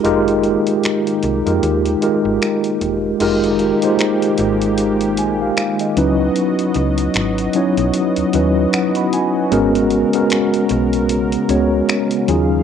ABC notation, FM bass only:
X:1
M:4/4
L:1/16
Q:"Swing 16ths" 1/4=76
K:Abmix
V:1 name="FM bass" clef=bass
F,,,3 z3 C,, F,, E,,2 z A,,, z2 =E,,,2 | F,,,3 z3 A,,,4 B,,,2 z2 D,,2 | z2 D,,2 A,,,2 z _C,, z E,, E,,2 z4 | A,,,3 z3 _C,,4 D,,2 z2 E,,2 |]